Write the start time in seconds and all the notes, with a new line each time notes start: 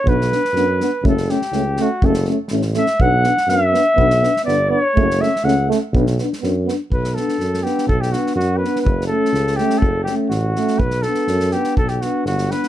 Already playing: C#5
0.04 B1 B3, kick
0.08 D4 B4
0.21 snare
0.31 B3 D4, snare
0.45 snare
0.53 F#2 B3 D4, snare
0.80 B3 D4, snare
1.02 F#1 A3 C#4, kick
1.08 A4
1.17 snare
1.29 A3 C#4 G4, snare
1.42 snare
1.52 C#2 A3 C#4, snare
1.77 A3 C#4, snare
1.82 F#4
2.02 F#1 A3 C#4 A4, kick
2.14 snare
2.25 A3 C#4, snare
2.48 A1 A3 C#4, snare
2.62 snare
2.74 A3 C#4 E5, snare
2.86 snare
3.00 B1 B3 D4 F#5, kick
3.23 B3 D4, snare
3.37 snare
3.47 F#2 B3 E5, snare
3.52 D4
3.72 B3 D4, snare
3.96 B1 B3, kick
4.00 D4
4.10 snare
4.21 B3 D4, snare
4.36 snare
4.45 G1 B3 D4 D5, snare
4.69 B3 D5
4.74 D4
4.81 C#5
4.95 F#1 A3 C#4, kick
5.11 snare
5.18 A3 E5
5.23 C#4, snare
5.36 snare
5.43 C#2 A3 C#4 F#5
5.48 snare
5.68 A3 C#4, snare
5.93 B1 B3, kick
5.97 D4
6.07 snare
6.18 B3, snare
6.23 D4
6.33 snare
6.41 F#2 B3, snare
6.45 D4
6.65 B3, snare
6.70 D4
6.91 B1 B4, kick
7.04 snare
7.14 B3 A4, snare
7.19 D4
7.29 snare
7.39 F#2, snare
7.54 snare
7.63 B3 D4 G4, snare
7.78 snare
7.87 B1 A4, kick
8.01 G4, snare
8.12 B3 D4 F#4, snare
8.27 snare
8.35 F#2 F#4
8.40 snare
8.57 B3 D4 B4
8.65 snare
8.76 snare
8.82 F#1 B4
8.86 kick
9.01 snare
9.07 A3 C#4 A4
9.25 snare
9.33 C#2, snare
9.47 snare
9.56 A3 C#4 G4, snare
9.70 snare
9.78 F#1 A4
9.82 kick
10.03 C#4 G4, snare
10.08 A3
10.30 A1 F#4, snare
10.56 A3 C#4, snare
10.68 snare
10.78 B1 B4, kick
10.90 snare
11.02 B3 D4 A4, snare
11.14 snare
11.27 F#2, snare
11.40 snare
11.51 B3 D4 G4, snare
11.64 snare
11.77 B1 A4, kick
11.88 G4, snare
12.01 B3 D4 F#4, snare
12.25 G1 F#4, snare
12.38 snare
12.51 B3 D4 B4, snare
12.63 snare